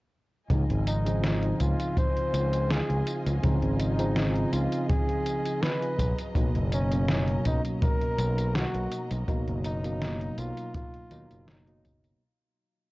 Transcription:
0.50 fingered electric bass C#2, tine electric piano C#3 F3 C4 D#4, string section F4 D#5 G#5, kick, closed hi-hat, tambourine
0.70 fingered electric bass G#1, closed hi-hat
0.87 flugelhorn D#4, closed hi-hat, tambourine
1.05 tine electric piano C#3 F3 C4 D#4, closed hi-hat, tambourine
1.24 snare, closed hi-hat, tambourine
1.43 closed hi-hat
1.60 fingered electric bass C#2, flugelhorn F4, kick, closed hi-hat, tambourine
1.80 closed hi-hat, tambourine
1.97 flugelhorn C5, kick, closed hi-hat, tambourine
2.17 closed hi-hat
2.33 fingered electric bass C#2, closed hi-hat, tambourine
2.53 closed hi-hat, tambourine
2.70 flugelhorn G#4, snare, closed hi-hat, tambourine
2.90 fingered electric bass C#2, closed hi-hat
3.07 closed hi-hat, tambourine
3.26 fingered electric bass C#2, closed hi-hat, tambourine
3.42 fingered electric bass C#2, tine electric piano C#3 F3 C4 D#4, kick, closed hi-hat, tambourine
3.62 fingered electric bass G#1, closed hi-hat
3.80 flugelhorn D#4, closed hi-hat, tambourine
3.98 tine electric piano C#3 F3 C4 D#4, closed hi-hat, tambourine
4.16 snare, closed hi-hat, tambourine
4.36 closed hi-hat
4.52 fingered electric bass C#2, flugelhorn F4, closed hi-hat, tambourine
4.72 closed hi-hat, tambourine
4.88 flugelhorn G#4, kick, closed hi-hat, tambourine
5.09 closed hi-hat
5.26 closed hi-hat, tambourine
5.45 closed hi-hat, tambourine
5.62 flugelhorn B4, snare, closed hi-hat, tambourine
5.82 closed hi-hat
5.98 fingered electric bass B1, string section F#3 A#5, kick, closed hi-hat, tambourine
6.18 closed hi-hat, tambourine
6.35 fingered electric bass B1, tine electric piano B2 F#3 A#3 D#4, kick, closed hi-hat, tambourine
6.55 fingered electric bass F#1, closed hi-hat
6.72 flugelhorn C#4, closed hi-hat, tambourine
6.90 tine electric piano B2 F#3 A#3 C#4, closed hi-hat, tambourine
7.08 snare, closed hi-hat, tambourine
7.27 closed hi-hat
7.45 fingered electric bass B1, flugelhorn D#4, kick, closed hi-hat, tambourine
7.65 closed hi-hat, tambourine
7.82 flugelhorn A#4, kick, closed hi-hat, tambourine
8.02 closed hi-hat
8.18 fingered electric bass B1, closed hi-hat, tambourine
8.38 closed hi-hat, tambourine
8.55 flugelhorn F#4, snare, closed hi-hat, tambourine
8.75 fingered electric bass B1, closed hi-hat
8.92 closed hi-hat, tambourine
9.11 fingered electric bass B1, closed hi-hat, tambourine
9.28 fingered electric bass B1, tine electric piano B2 F#3 A#3 D#4, kick, closed hi-hat, tambourine
9.48 fingered electric bass F#1, closed hi-hat
9.65 flugelhorn D#4, closed hi-hat, tambourine
9.84 tine electric piano B2 F#3 A#3 D#4, closed hi-hat, tambourine
10.02 snare, closed hi-hat, tambourine
10.21 closed hi-hat
10.38 fingered electric bass B1, flugelhorn F4, closed hi-hat, tambourine
10.57 closed hi-hat, tambourine
10.75 flugelhorn F4, kick, closed hi-hat, tambourine
10.94 closed hi-hat
11.10 fingered electric bass D#2, tine electric piano B2 F#3 A#3 D#4, closed hi-hat, tambourine
11.31 fingered electric bass F#1, closed hi-hat, tambourine
11.48 flugelhorn D#4, snare, closed hi-hat, tambourine
11.66 tine electric piano B2 F#3 A#3 D#4, closed hi-hat
11.85 kick, closed hi-hat, tambourine
12.04 closed hi-hat, tambourine

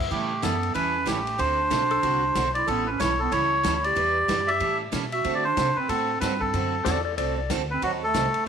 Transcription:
Already playing: electric slide guitar E5
0.10 upright bass A2, steel-string acoustic guitar E3 G3 C#4 E4 A4, clarinet A3, melodica G4, kick
0.42 upright bass F#2, steel-string acoustic guitar E3 G3 C#4 E4 A4, clarinet B3, melodica A4, kick, snare, hi-hat pedal, ride
0.63 ride
0.74 upright bass E2, steel-string acoustic guitar E3 G3 C#4 E4 A4, clarinet C#4, melodica B4, kick, ride
1.06 upright bass A1, steel-string acoustic guitar E3 G3 C#4 E4 A4, clarinet A3, melodica G4, kick, snare, hi-hat pedal, ride
1.27 ride
1.38 upright bass D2, steel-string acoustic guitar D3 A3 C4 F#4 A4, clarinet D4, melodica C5, kick, ride
1.70 upright bass B1, steel-string acoustic guitar D3 A3 C4 F#4 A4, kick, snare, hi-hat pedal, ride
1.91 electric slide guitar A4, ride
2.03 upright bass C2, steel-string acoustic guitar D3 A3 C4 F#4 A4, electric slide guitar F#4, kick, ride
2.35 upright bass B1, steel-string acoustic guitar D3 A3 C4 F#4 A4, kick, snare, hi-hat pedal, ride
2.54 clarinet E4, melodica D5, ride
2.67 upright bass A1, steel-string acoustic guitar E3 G3 C#4 E4 A4, clarinet B3, melodica A4, kick, ride
2.86 clarinet C#4, melodica B4
2.99 upright bass B1, steel-string acoustic guitar E3 G3 C#4 E4 A4, clarinet E4, melodica C#5, kick, snare, hi-hat pedal, ride
3.19 clarinet B3, melodica A4
3.32 upright bass C#2, steel-string acoustic guitar E3 G3 C#4 E4 A4, clarinet E4, melodica C#5, kick, ride
3.63 upright bass D2, steel-string acoustic guitar E3 G3 C#4 E4 A4, kick, snare, hi-hat pedal, ride
3.75 clarinet E4, melodica C#5
3.84 clarinet G4, melodica D5, ride
3.95 upright bass E2, steel-string acoustic guitar E3 G3 D4 E4 B4, kick, ride
4.28 upright bass F#2, steel-string acoustic guitar E3 G3 D4 E4 B4, kick, snare, hi-hat pedal, ride
4.47 clarinet G4, melodica E5, ride
4.60 upright bass A2, steel-string acoustic guitar E3 G3 C#4 E4 A4, kick, ride
4.92 upright bass B2, steel-string acoustic guitar E3 G3 C#4 E4 A4, kick, snare, hi-hat pedal, ride
5.12 clarinet F#4, melodica E5, ride
5.24 steel-string acoustic guitar D3 A3 C4 F#4 A4, upright bass D3, kick, ride
5.35 clarinet F#4, melodica D5
5.44 clarinet D4, melodica C5
5.57 upright bass C3, steel-string acoustic guitar D3 A3 C4 F#4 A4, kick, snare, hi-hat pedal, ride
5.76 clarinet C4, melodica B4, muted upright bass stroke
5.88 upright bass A2, steel-string acoustic guitar D3 A3 C4 F#4 A4, clarinet C4, melodica A4, kick, ride
6.21 upright bass G2, steel-string acoustic guitar D3 A3 C4 F#4 A4, clarinet C4, melodica B4, kick, snare, hi-hat pedal, ride
6.40 clarinet C4, melodica A4, kick
6.53 upright bass F#2, steel-string acoustic guitar D3 A3 C4 F#4 A4, kick, ride
6.85 upright bass E2, steel-string acoustic guitar D3 A3 C4 F#4 A4, electric slide guitar A4 D5, kick, snare, hi-hat pedal, ride
7.05 electric slide guitar A4 D5
7.18 upright bass C2, steel-string acoustic guitar D3 A3 C4 F#4 A4, electric slide guitar A4 D5, kick, ride
7.38 electric slide guitar D5
7.50 upright bass D2, steel-string acoustic guitar D3 A3 C4 F#4 A4, kick, snare, hi-hat pedal, ride
7.70 clarinet C4, melodica B4
7.82 upright bass D#2, steel-string acoustic guitar D#3 F#3 C4 D#4 A4, clarinet F#3, melodica F#4, kick, ride
8.03 clarinet A3, melodica A4
8.14 upright bass C2, steel-string acoustic guitar D#3 F#3 C4 D#4 A4, kick, snare, hi-hat pedal, ride
8.34 ride

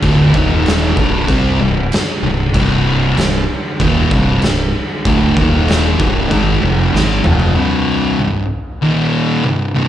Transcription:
0.02 fingered electric bass D1, distorted electric guitar D2 A2 D3, kick, crash
0.33 fingered electric bass D#1, distorted electric guitar D#2 A#2 D#3, kick
0.66 snare, crash
0.97 fingered electric bass C1, distorted electric guitar C2 G2 C3, kick
1.28 fingered electric bass C2, distorted electric guitar C3 G3 C4, kick, crash
1.59 fingered electric bass C1, distorted electric guitar C2 G2
1.92 snare, crash
2.22 fingered electric bass C1, distorted electric guitar C2 G2
2.53 fingered electric bass C1, distorted electric guitar C2 G2 C3, kick, crash
3.17 fingered electric bass C1, distorted electric guitar C2 G2, snare, crash
3.80 fingered electric bass D#1, distorted electric guitar D#2 A#2 D#3, kick, crash
4.11 fingered electric bass C1, distorted electric guitar C2 G2 C3, kick
4.42 fingered electric bass C1, distorted electric guitar C2 G2, snare, crash
5.05 fingered electric bass D1, distorted electric guitar D2 A2 D3, kick, crash
5.37 fingered electric bass D#1, distorted electric guitar D#2 A#2 D#3, kick
5.68 snare, crash
5.99 fingered electric bass C1, distorted electric guitar C2 G2 C3, kick
6.30 fingered electric bass G#1, distorted electric guitar G#2 D#3 G#3, kick, crash
6.62 fingered electric bass F1, distorted electric guitar F2 C3 F3
6.93 fingered electric bass G#1, distorted electric guitar G#2 D#3 G#3, snare
7.24 fingered electric bass F1, distorted electric guitar F2 C3 F3, mid tom
7.40 floor tom
7.55 distorted electric guitar C2 G2 C3
8.19 distorted electric guitar C2 G2
8.82 distorted electric guitar D#2 A#2 D#3
9.45 distorted electric guitar C2 G2
9.75 distorted electric guitar C2 G2 C3

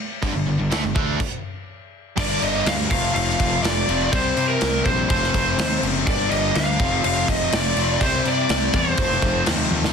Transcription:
0.22 picked electric bass G1, distorted electric guitar G2 D3, kick, crash
0.35 picked electric bass G1, distorted electric guitar G2 D3
0.48 picked electric bass G1, distorted electric guitar G2 D3
0.59 picked electric bass G1, distorted electric guitar G2 D3
0.71 picked electric bass D2, distorted electric guitar D3 A3, snare, crash
0.83 picked electric bass G1, distorted electric guitar G2 D3
0.96 picked electric bass D2, distorted electric guitar D3 A3 D4, kick
1.20 kick, crash
2.16 picked electric bass G1, distorted electric guitar G2 D3 G3 A#3 D4, lead electric guitar D5, kick, crash
2.42 picked electric bass G1, lead electric guitar D#5, crash
2.66 picked electric bass D2, lead electric guitar F5, snare, crash
2.90 picked electric bass F1, overdriven electric guitar F2 C3, distorted electric guitar F3 A3 C4 F4, lead electric guitar F5, kick, crash
3.15 picked electric bass F1, lead electric guitar F5, crash
3.29 snare
3.40 picked electric bass F1, kick, crash
3.63 picked electric bass F1, lead electric guitar D5, snare, crash
3.87 picked electric bass F1, overdriven electric guitar F2 C3 F3, distorted electric guitar A3 C4 F4, crash
3.92 distorted electric guitar F3
4.12 picked electric bass C2, distorted electric guitar C3 E3 G3 C4 E4, lead electric guitar C5, kick, crash
4.37 picked electric bass C3, crash
4.49 lead electric guitar A#4
4.61 picked electric bass C2, snare, crash
4.85 picked electric bass A#1, lead electric guitar C5, kick, crash
5.09 picked electric bass F1, overdriven electric guitar F2 C3, distorted electric guitar F3 A3 C4 F4, lead electric guitar C5, kick, crash
5.23 snare
5.34 picked electric bass F1, kick, crash
5.58 picked electric bass D#2, snare, crash
5.83 picked electric bass F#1, crash
6.06 picked electric bass G1, overdriven electric guitar G2 D3, distorted electric guitar G3 A#3 D4 G4, lead electric guitar D5, kick, crash
6.31 picked electric bass G1, lead electric guitar D#5, crash
6.55 picked electric bass D2, lead electric guitar F5, snare, crash
6.78 picked electric bass F1, overdriven electric guitar F2 C3, distorted electric guitar F3 A3 C4 F4, kick, crash
7.04 picked electric bass F1, lead electric guitar F5, crash
7.28 picked electric bass F1, lead electric guitar D#5, kick, crash
7.52 picked electric bass F1, lead electric guitar D5, snare, crash
7.76 picked electric bass F1, overdriven electric guitar F2 C3, distorted electric guitar F3 A3 C4 F4, crash
7.99 picked electric bass C2, distorted electric guitar C3 E3 G3 C4 E4, lead electric guitar C5, kick, crash
8.25 picked electric bass C3, lead electric guitar D5, crash
8.49 picked electric bass C2, snare, crash
8.74 picked electric bass E2, lead electric guitar C5, kick, crash
8.97 picked electric bass F1, overdriven electric guitar F2 C3, distorted electric guitar F3 A3 C4 F4, kick, crash
9.11 snare
9.22 picked electric bass F1, kick, crash
9.46 picked electric bass D#2, snare, crash
9.71 picked electric bass D#2, high tom
9.84 snare

